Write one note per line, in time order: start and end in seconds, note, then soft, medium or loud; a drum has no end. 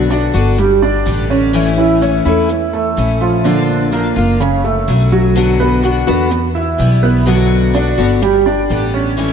0.00 0.28 B1 medium
0.00 0.10 D4 medium
0.00 0.10 F#4 medium
0.10 0.33 D3 medium
0.10 0.34 B3 medium
0.10 0.50 D4 medium
0.10 0.33 D4 soft
0.10 0.32 F#4 medium
0.10 0.50 D5 medium
0.10 maracas medium
0.34 1.02 G1 medium
0.34 0.57 D3 medium
0.34 0.58 B3 medium
0.34 0.58 D4 medium
0.34 0.57 F#4 medium
0.34 maracas soft
0.58 0.78 G3 medium
0.58 0.78 G4 medium
0.58 muted steel-string acoustic guitar stroke medium
0.58 maracas medium
0.82 1.22 D4 medium
0.82 1.22 D5 medium
0.82 maracas soft
1.06 2.19 A1 medium
1.06 1.53 D3 medium
1.06 1.53 G3 medium
1.06 1.54 B3 soft
1.06 1.54 G4 medium
1.06 maracas medium
1.30 1.69 C#4 medium
1.30 maracas soft
1.53 2.00 E3 medium
1.53 2.01 A3 medium
1.53 2.01 C#4 medium
1.53 2.02 E4 medium
1.53 maracas medium
1.78 1.97 E3 medium
1.78 1.97 E4 medium
1.78 maracas soft
2.01 2.24 E3 soft
2.01 2.25 A3 soft
2.01 2.21 C#4 medium
2.01 2.25 C#4 medium
2.01 2.24 E4 medium
2.01 2.21 C#5 medium
2.01 maracas medium
2.25 2.93 E2 medium
2.25 2.65 E3 medium
2.25 2.49 A3 medium
2.25 2.49 C#4 medium
2.25 2.48 E4 medium
2.25 2.65 E4 medium
2.25 maracas soft
2.49 muted steel-string acoustic guitar stroke medium
2.49 maracas medium
2.73 3.12 A3 medium
2.73 3.13 A4 medium
2.73 maracas soft
2.97 4.10 A#1 medium
2.97 3.44 E3 soft
2.97 3.44 A3 soft
2.97 3.45 C#4 soft
2.97 3.45 E4 medium
2.97 maracas medium
3.21 3.41 F3 medium
3.21 3.41 F4 medium
3.21 maracas soft
3.44 3.84 D3 medium
3.44 3.91 F3 medium
3.44 3.92 A#3 medium
3.44 3.84 D4 medium
3.44 3.92 D4 medium
3.44 3.93 F4 medium
3.44 maracas medium
3.68 maracas soft
3.92 4.15 F3 soft
3.92 4.32 A#3 medium
3.92 4.16 A#3 medium
3.92 4.16 D4 medium
3.92 4.15 F4 medium
3.92 4.32 A#4 medium
3.92 maracas medium
4.16 4.84 F#1 medium
4.16 4.40 A#3 medium
4.16 4.40 D4 medium
4.16 4.39 F4 medium
4.16 maracas soft
4.40 4.60 C#3 medium
4.40 4.60 C#4 medium
4.40 muted steel-string acoustic guitar stroke medium
4.40 maracas medium
4.64 5.03 A3 medium
4.64 5.04 A4 medium
4.64 maracas soft
4.88 6.01 B1 medium
4.88 5.35 F#3 medium
4.88 5.35 A3 medium
4.88 5.36 C#4 medium
4.88 5.36 F#4 medium
4.88 maracas medium
5.12 5.51 F#3 medium
5.12 5.51 F#4 medium
5.12 maracas soft
5.35 5.82 B2 medium
5.35 5.82 D3 medium
5.35 5.82 B3 medium
5.35 5.83 D4 medium
5.35 5.83 F#4 medium
5.35 maracas medium
5.59 5.79 B3 medium
5.59 5.80 B4 medium
5.59 maracas soft
5.83 6.06 D3 medium
5.83 6.07 B3 medium
5.83 6.07 D4 medium
5.83 6.03 F#4 medium
5.83 6.06 F#4 medium
5.83 6.03 F#5 medium
5.83 maracas medium
6.07 6.75 E2 medium
6.07 6.31 D3 medium
6.07 6.46 B3 medium
6.07 6.31 B3 medium
6.07 6.31 D4 medium
6.07 6.30 F#4 medium
6.07 6.47 B4 medium
6.07 maracas soft
6.31 muted steel-string acoustic guitar stroke medium
6.31 maracas medium
6.55 6.94 E4 medium
6.55 6.94 E5 medium
6.55 maracas soft
6.78 7.92 B1 loud
6.78 7.25 E3 medium
6.78 7.26 G3 medium
6.78 7.26 B3 medium
6.78 7.27 E4 medium
6.78 maracas medium
7.03 7.22 B3 medium
7.03 7.23 B4 medium
7.03 maracas soft
7.26 7.73 B2 medium
7.26 7.73 D3 medium
7.26 7.66 F#3 medium
7.26 7.74 B3 medium
7.26 7.74 D4 medium
7.26 7.66 F#4 medium
7.26 7.74 F#4 medium
7.26 maracas medium
7.51 maracas soft
7.74 7.97 D3 medium
7.74 7.98 B3 medium
7.74 8.14 D4 medium
7.74 7.97 D4 medium
7.74 7.96 F#4 medium
7.74 8.14 D5 medium
7.74 maracas medium
7.97 8.66 G1 medium
7.97 8.21 D3 medium
7.97 8.22 B3 medium
7.97 8.21 D4 medium
7.97 8.21 F#4 medium
7.97 maracas soft
8.22 8.42 G3 medium
8.22 8.42 G4 medium
8.22 muted steel-string acoustic guitar stroke medium
8.22 maracas medium
8.46 8.85 D4 medium
8.46 8.85 D5 medium
8.46 maracas soft
8.69 9.33 A1 medium
8.69 9.16 D3 soft
8.69 9.17 G3 medium
8.69 9.17 B3 medium
8.69 9.18 G4 medium
8.69 maracas medium
8.94 9.33 C#4 medium
8.94 maracas soft
9.17 9.33 E3 medium
9.17 9.33 A3 medium
9.17 9.33 C#4 medium
9.17 9.33 E4 medium
9.17 maracas medium